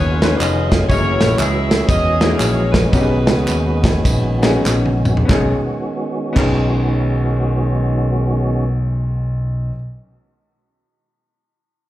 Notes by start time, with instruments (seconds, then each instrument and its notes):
Already playing: fingered electric bass D#2, tonewheel organ D#3 F#3 B3 C#4 F4, saxophone section F4 G#4 B4 C#5
0.22 grand piano B3 C#4 D#4 F4 B4, snare, ride, tambourine
0.38 fingered electric bass F1, saxophone section D#5, clap, ride, tambourine
0.70 saxophone section D#5, kick, snare, ride, tambourine
0.88 fingered electric bass F#1, tonewheel organ E3 G#3 C#4 F#4, grand piano A3 E4 F#4 G#4 D#5, saxophone section E4 A#4 C#5, kick, ride, tambourine
0.95 grand piano A#3
1.20 fingered electric bass A#1, snare, ride, tambourine
1.38 fingered electric bass C#2, saxophone section G#4 A#4 E5, clap, ride, tambourine
1.71 snare, ride, tambourine
1.88 fingered electric bass E2, saxophone section G#4 A#4 D#5, kick, ride, tambourine
2.21 grand piano A#3 D#4 E4 F#4 G#4, saxophone section D#5, snare, ride, tambourine
2.38 fingered electric bass A#1, saxophone section C#5, clap, ride, tambourine
2.71 saxophone section D#4 G#4 B4, kick, snare, ride, tambourine
2.92 fingered electric bass B1, grand piano B2 B3 C#4 D#4 F#4 G4, tonewheel organ D#3 B3 C#4, kick, ride, tambourine
3.00 grand piano G#4
3.27 fingered electric bass C#2, snare, ride, tambourine
3.48 fingered electric bass D#2, clap, ride, tambourine
3.83 kick, snare, ride, tambourine
4.05 fingered electric bass A#1, kick, ride, tambourine
4.43 grand piano B3 C#4 D#4 F#4 G#4, snare, ride, tambourine
4.65 fingered electric bass A#1, snare, clap, tambourine
4.86 high tom
5.05 mid tom, tambourine
5.17 floor tom
5.25 grand piano B1 B3 C#4, kick
5.29 fingered electric bass B1, tonewheel organ D#3 G#3 B3 C#4 F#4, grand piano D#4 G#4, snare, clap
6.33 grand piano B1 B3 C#4, fingered electric bass B1, kick, crash
6.37 grand piano D#4 G#4, clap